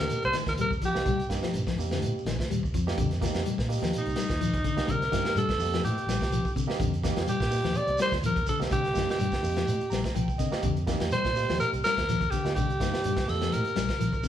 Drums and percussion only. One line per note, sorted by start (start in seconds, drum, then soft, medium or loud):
0.00 shekere soft
0.10 closed hi-hat medium
0.10 shekere medium
0.22 closed hi-hat soft
0.22 shekere soft
0.33 snare medium
0.33 closed hi-hat medium
0.33 shekere medium
0.47 kick medium
0.47 snare medium
0.47 closed hi-hat soft
0.47 shekere soft
0.57 closed hi-hat medium
0.57 shekere loud
0.71 kick medium
0.71 shekere soft
0.81 kick medium
0.81 closed hi-hat medium
0.81 shekere medium
0.95 snare medium
0.95 shekere soft
1.06 kick loud
1.06 closed hi-hat medium
1.06 shekere medium
1.19 closed hi-hat soft
1.19 shekere soft
1.30 kick medium
1.30 snare medium
1.30 closed hi-hat medium
1.30 shekere medium
1.43 snare medium
1.43 shekere soft
1.54 closed hi-hat medium
1.54 shekere medium
1.67 kick medium
1.67 snare medium
1.67 shekere soft
1.78 open hi-hat medium
1.78 shekere medium
1.91 snare medium
1.91 shekere soft
2.02 closed hi-hat medium
2.02 shekere medium
2.18 shekere soft
2.26 snare medium
2.26 closed hi-hat medium
2.26 shekere medium
2.39 kick medium
2.39 snare medium
2.39 shekere soft
2.51 closed hi-hat medium
2.51 shekere medium
2.63 kick medium
2.63 shekere soft
2.74 kick medium
2.74 closed hi-hat medium
2.74 shekere medium
2.88 snare medium
2.88 shekere soft
2.98 kick medium
2.98 closed hi-hat medium
2.98 shekere medium
3.11 snare soft
3.11 closed hi-hat soft
3.11 shekere soft
3.22 kick medium
3.22 snare medium
3.22 closed hi-hat medium
3.22 shekere medium
3.34 snare medium
3.34 closed hi-hat soft
3.34 shekere soft
3.45 closed hi-hat medium
3.45 shekere medium
3.58 kick medium
3.58 snare medium
3.58 shekere soft
3.70 open hi-hat medium
3.70 shekere medium
3.83 snare medium
3.83 shekere soft
3.93 closed hi-hat medium
3.93 shekere medium
4.05 closed hi-hat soft
4.05 shekere soft
4.16 snare medium
4.16 closed hi-hat medium
4.16 shekere medium
4.29 kick medium
4.29 snare medium
4.29 closed hi-hat soft
4.29 shekere soft
4.41 closed hi-hat medium
4.41 shekere medium
4.53 kick medium
4.53 closed hi-hat soft
4.53 shekere soft
4.64 kick medium
4.64 closed hi-hat medium
4.64 shekere medium
4.77 snare medium
4.77 closed hi-hat soft
4.77 shekere soft
4.88 kick medium
4.88 closed hi-hat medium
4.88 shekere medium
5.02 snare soft
5.02 closed hi-hat soft
5.02 shekere soft
5.12 kick medium
5.12 snare medium
5.12 closed hi-hat medium
5.12 shekere medium
5.25 snare medium
5.25 shekere soft
5.36 closed hi-hat medium
5.36 shekere medium
5.49 kick medium
5.49 snare medium
5.49 closed hi-hat soft
5.49 shekere soft
5.60 snare soft
5.60 open hi-hat medium
5.60 shekere medium
5.73 snare medium
5.73 closed hi-hat soft
5.73 shekere soft
5.85 snare soft
5.85 closed hi-hat medium
5.85 shekere medium
5.98 closed hi-hat soft
5.98 shekere soft
6.08 snare medium
6.08 closed hi-hat medium
6.08 shekere medium
6.21 kick medium
6.21 snare medium
6.21 closed hi-hat soft
6.21 shekere soft
6.32 closed hi-hat medium
6.32 shekere loud
6.45 kick medium
6.45 shekere soft
6.56 kick medium
6.56 closed hi-hat medium
6.56 shekere medium
6.70 snare medium
6.70 shekere soft
6.80 kick loud
6.80 closed hi-hat medium
6.80 shekere medium
6.93 closed hi-hat soft
6.93 shekere soft
7.04 kick medium
7.04 snare medium
7.04 closed hi-hat medium
7.04 shekere medium
7.16 snare medium
7.16 closed hi-hat soft
7.16 shekere soft
7.28 closed hi-hat medium
7.28 shekere loud
7.40 kick medium
7.40 snare medium
7.40 shekere soft
7.51 snare soft
7.51 open hi-hat medium
7.51 shekere medium
7.64 snare medium
7.64 shekere soft
7.74 closed hi-hat medium
7.74 shekere medium
7.87 closed hi-hat soft
7.87 shekere soft
7.98 snare medium
7.98 closed hi-hat medium
7.98 shekere medium
8.12 kick medium
8.12 snare medium
8.12 closed hi-hat soft
8.12 shekere soft
8.23 closed hi-hat medium
8.23 shekere loud
8.36 kick medium
8.36 closed hi-hat soft
8.36 shekere soft
8.47 kick medium
8.47 closed hi-hat medium
8.47 shekere medium
8.61 snare medium
8.61 closed hi-hat soft
8.61 shekere soft
8.71 kick loud
8.71 closed hi-hat medium
8.71 shekere medium
8.84 snare soft
8.84 closed hi-hat soft
8.84 shekere soft
8.95 kick medium
8.95 snare medium
8.95 closed hi-hat medium
8.95 shekere medium
9.08 snare medium
9.08 shekere soft
9.19 closed hi-hat medium
9.19 shekere medium
9.32 kick medium
9.32 snare medium
9.32 closed hi-hat soft
9.32 shekere soft
9.43 open hi-hat medium
9.43 shekere medium
9.56 snare medium
9.56 closed hi-hat soft
9.56 shekere soft
9.67 closed hi-hat medium
9.67 shekere medium
9.80 closed hi-hat soft
9.80 shekere soft
9.91 snare medium
9.91 closed hi-hat soft
9.91 shekere medium
10.04 kick medium
10.04 snare medium
10.04 closed hi-hat soft
10.04 shekere soft
10.15 closed hi-hat medium
10.15 shekere loud
10.28 kick medium
10.28 shekere soft
10.39 kick medium
10.39 snare soft
10.39 closed hi-hat soft
10.39 shekere medium
10.52 snare medium
10.52 shekere soft
10.63 kick medium
10.63 closed hi-hat medium
10.63 shekere medium
10.76 closed hi-hat soft
10.76 shekere soft
10.87 kick medium
10.87 snare medium
10.87 closed hi-hat medium
10.87 shekere medium
11.00 snare medium
11.00 closed hi-hat soft
11.00 shekere soft
11.11 snare soft
11.11 closed hi-hat medium
11.11 shekere medium
11.24 kick medium
11.24 snare medium
11.24 shekere soft
11.35 snare soft
11.35 open hi-hat medium
11.35 shekere medium
11.49 snare medium
11.49 shekere soft
11.60 closed hi-hat medium
11.60 shekere medium
11.73 closed hi-hat soft
11.73 shekere soft
11.84 snare medium
11.84 closed hi-hat medium
11.84 shekere medium
11.97 kick medium
11.97 snare medium
11.97 closed hi-hat soft
11.97 shekere soft
12.09 snare soft
12.09 closed hi-hat medium
12.09 shekere loud
12.21 kick medium
12.21 closed hi-hat soft
12.21 shekere soft
12.32 kick medium
12.32 snare soft
12.32 closed hi-hat medium
12.32 shekere medium
12.45 snare medium
12.45 closed hi-hat soft
12.45 shekere soft
12.56 kick medium
12.56 closed hi-hat medium
12.56 shekere medium
12.70 closed hi-hat soft
12.70 shekere soft
12.80 kick medium
12.80 snare medium
12.80 closed hi-hat medium
12.80 shekere medium
12.94 snare medium
12.94 shekere soft
13.04 closed hi-hat medium
13.04 shekere medium
13.16 kick medium
13.16 snare medium
13.16 closed hi-hat soft
13.16 shekere soft
13.28 snare soft
13.28 open hi-hat medium
13.28 shekere medium
13.41 snare medium
13.41 closed hi-hat soft
13.41 shekere soft
13.52 snare soft
13.52 closed hi-hat medium
13.52 shekere medium
13.65 closed hi-hat soft
13.65 shekere soft
13.76 snare medium
13.76 closed hi-hat medium
13.76 shekere medium
13.89 kick medium
13.89 snare medium
13.89 closed hi-hat soft
13.89 shekere soft
14.00 closed hi-hat medium
14.00 shekere medium
14.13 kick medium
14.13 shekere soft
14.24 kick medium
14.24 snare soft
14.24 closed hi-hat soft
14.24 shekere medium